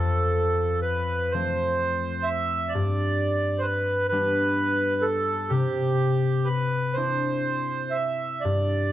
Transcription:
Already playing: harp F2 B3 D4, accordion A4
0.82 accordion B4
1.31 harp F3 A3 C4, accordion C5
2.23 accordion E5
2.69 accordion D5
2.75 harp G2
3.59 accordion B4 C5
4.08 harp G3, accordion B4
4.12 harp B3 D4
5.02 accordion A4
5.49 harp C3, accordion G4
6.45 accordion B4
6.93 harp C4 D4, accordion C5
6.98 harp E4
7.91 accordion E5
8.41 harp G2, accordion D5

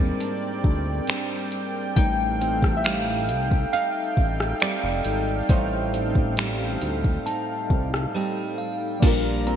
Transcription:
Already playing: analog synth bass D#2, nylon-string guitar G#2 G3 C4 D4, synth keys G3 A#3 C4 D4 G#4 A#4, analog synth pad C4 A#4 D5 G5
0.20 nylon-string guitar D4, closed hi-hat
0.64 analog synth bass D2, kick
1.07 nylon-string guitar G3 C4 D4, finger snap, closed hi-hat
1.52 closed hi-hat
1.96 analog synth bass A1, synth keys G3 A3 D#4 G5, analog synth pad D#4 A4 F5, nylon-string guitar D#4, kick, closed hi-hat
2.41 nylon-string guitar C4, synth bell G5, closed hi-hat
2.62 kick, cross-stick
2.77 synth keys E5
2.84 nylon-string guitar G3 C4 D#4, synth keys F5, finger snap, closed hi-hat
3.29 analog synth bass C2, closed hi-hat
3.51 kick
3.73 nylon-string guitar D#4, synth keys F5, closed hi-hat
4.17 analog synth bass A1, kick
4.40 cross-stick
4.60 nylon-string guitar G3 C4 D#4, synth keys D5, finger snap, closed hi-hat
4.84 analog synth bass F1
5.04 analog synth bass G#1, closed hi-hat
5.49 analog synth bass A1, nylon-string guitar A2 D#4, synth keys G3 A3 D#4 C5, kick, closed hi-hat
5.94 nylon-string guitar C4, closed hi-hat
6.15 kick
6.37 nylon-string guitar G3 C4 D#4, finger snap, closed hi-hat
6.81 analog synth bass D2, closed hi-hat
7.04 kick
7.26 nylon-string guitar D#4, synth bell A5, closed hi-hat
7.70 analog synth bass C2, kick
7.94 cross-stick
8.14 nylon-string guitar G3 C4 D#4
8.58 synth bell F5
9.00 analog synth bass A#1, nylon-string guitar A#2, synth keys G3 A#3 D4, analog synth pad G4 D5 F5 A#5, kick, closed hi-hat, crash
9.05 synth keys F4 A#4
9.47 nylon-string guitar C4, synth bell A#5, closed hi-hat

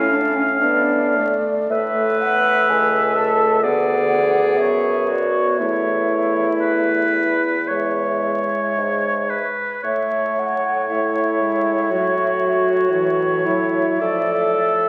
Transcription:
Already playing: bassoon A2, french horn A3, clarinet C#4, flute C#5, oboe F5
0.12 clarinet D4
0.36 clarinet C#4
0.60 french horn B3, clarinet D4, flute D5
1.17 french horn A3
1.70 bassoon A2, french horn A3, clarinet B4, flute E5, oboe E5
2.21 flute F#5
2.69 bassoon C#2, flute G#5
3.16 clarinet A4, flute A5
3.62 bassoon D2, french horn B3, clarinet G#4, oboe D5, flute F#5
4.12 french horn B3
4.57 bassoon F#2, oboe C#5, flute E5
5.08 clarinet F#4, flute D5
5.58 bassoon E2, french horn A3, clarinet E4, oboe C#5, flute E5
6.61 oboe B4
7.68 bassoon E2, french horn G#3, oboe C#5, flute E5
8.78 bassoon G#2
9.30 oboe B4
9.83 bassoon A2, french horn A3, oboe C#5, flute E5
10.39 flute F#5
10.90 french horn A3, clarinet E4, flute E5
11.40 french horn G#3
11.90 french horn F#3, clarinet F#4
12.91 french horn E3, oboe C#5, flute E5
13.45 french horn F#3, clarinet E4
14.00 bassoon A2, french horn F3, clarinet A4, oboe D5
14.55 french horn F3

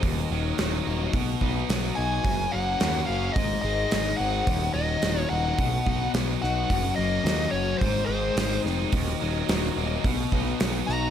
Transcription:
0.01 picked electric bass D#1, distorted electric guitar D#2, overdriven electric guitar D#2, tonewheel organ D#4 F#4 A#4 D#5, kick, open hi-hat
0.31 picked electric bass D#1, overdriven electric guitar D#3, distorted electric guitar F#3
0.58 picked electric bass D#1, distorted electric guitar D#3, overdriven electric guitar F#3, snare, open hi-hat
0.85 picked electric bass D#1, distorted electric guitar A#3, overdriven electric guitar D#4
1.13 picked electric bass B1, distorted electric guitar B2, overdriven electric guitar B2, tonewheel organ D#4 F#4 B4 D#5, kick, open hi-hat
1.41 picked electric bass B1, overdriven electric guitar B3, distorted electric guitar D#4, kick
1.69 picked electric bass B1, overdriven electric guitar F#3, distorted electric guitar B3, snare, open hi-hat
1.95 picked electric bass B1, overdriven electric guitar D#4, distorted electric guitar F#4, lead electric guitar G#5
2.25 picked electric bass F#1, overdriven electric guitar F#2, distorted electric guitar F#2, tonewheel organ C#4 F#4 A#4 C#5, kick, open hi-hat
2.52 picked electric bass F#1, overdriven electric guitar F#3, distorted electric guitar A#3, lead electric guitar F#5
2.80 picked electric bass D#2, distorted electric guitar F#3, overdriven electric guitar A#3, snare, open hi-hat
3.06 picked electric bass F#1, distorted electric guitar C#4, overdriven electric guitar F#4, lead electric guitar F5
3.33 picked electric bass G#1, distorted electric guitar G#2, overdriven electric guitar G#2, tonewheel organ D#4 G#4 C5 D#5, lead electric guitar D#5, kick, open hi-hat
3.61 picked electric bass G#1, overdriven electric guitar G#3, distorted electric guitar C4, lead electric guitar D#5
3.91 picked electric bass G#1, overdriven electric guitar D#3, distorted electric guitar G#3, snare, open hi-hat
4.17 picked electric bass G#1, overdriven electric guitar C4, distorted electric guitar D#4, lead electric guitar F#5
4.46 picked electric bass D#1, overdriven electric guitar D#2, distorted electric guitar D#2, tonewheel organ D#4 F#4 A#4 D#5, kick, open hi-hat
4.74 picked electric bass D#1, overdriven electric guitar D#3, distorted electric guitar F#3, lead electric guitar D#5
5.02 picked electric bass D#1, distorted electric guitar D#3, overdriven electric guitar F#3, snare, open hi-hat
5.20 lead electric guitar C#5
5.30 picked electric bass D#1, distorted electric guitar A#3, overdriven electric guitar D#4, lead electric guitar F#5
5.59 picked electric bass B1, distorted electric guitar B2, overdriven electric guitar B2, tonewheel organ D#4 F#4 B4 D#5, kick, open hi-hat
5.86 picked electric bass B1, overdriven electric guitar B3, distorted electric guitar D#4, kick
6.14 picked electric bass B1, overdriven electric guitar F#3, distorted electric guitar B3, snare, open hi-hat
6.42 picked electric bass B1, overdriven electric guitar D#4, distorted electric guitar F#4, lead electric guitar F#5, snare
6.70 picked electric bass F#1, distorted electric guitar F#2, overdriven electric guitar F#2, tonewheel organ C#4 F#4 A#4 C#5, kick, open hi-hat
6.96 picked electric bass F#1, overdriven electric guitar F#3, distorted electric guitar A#3, lead electric guitar D#5
7.24 picked electric bass D#2, distorted electric guitar F#3, overdriven electric guitar A#3, snare, open hi-hat
7.51 picked electric bass F#1, overdriven electric guitar F#4, lead electric guitar C#5
7.55 distorted electric guitar C#4
7.78 picked electric bass G#1, tonewheel organ D#4 G#4 C5 D#5, lead electric guitar C5, kick, open hi-hat
7.82 distorted electric guitar G#2, overdriven electric guitar G#2
8.06 picked electric bass G#1, distorted electric guitar C4, lead electric guitar C5
8.11 overdriven electric guitar G#3
8.36 picked electric bass G#1, overdriven electric guitar D#3, distorted electric guitar G#3, snare, open hi-hat
8.64 picked electric bass F1, overdriven electric guitar C4, distorted electric guitar D#4, snare
8.92 picked electric bass D#1, distorted electric guitar D#2, overdriven electric guitar D#2, tonewheel organ D#4 F#4 A#4 D#5, kick, open hi-hat
9.21 picked electric bass D#1, overdriven electric guitar D#3, distorted electric guitar F#3
9.49 picked electric bass D#1, distorted electric guitar D#3, overdriven electric guitar F#3, snare, open hi-hat
9.76 picked electric bass D#1, distorted electric guitar A#3, overdriven electric guitar D#4
10.04 picked electric bass B1, distorted electric guitar B2, overdriven electric guitar B2, tonewheel organ D#4 F#4 B4 D#5, kick, open hi-hat
10.32 picked electric bass B1, overdriven electric guitar B3, distorted electric guitar D#4, kick
10.60 picked electric bass B1, overdriven electric guitar F#3, distorted electric guitar B3, snare, open hi-hat
10.87 picked electric bass B1, overdriven electric guitar D#4, distorted electric guitar F#4, lead electric guitar A#5, snare

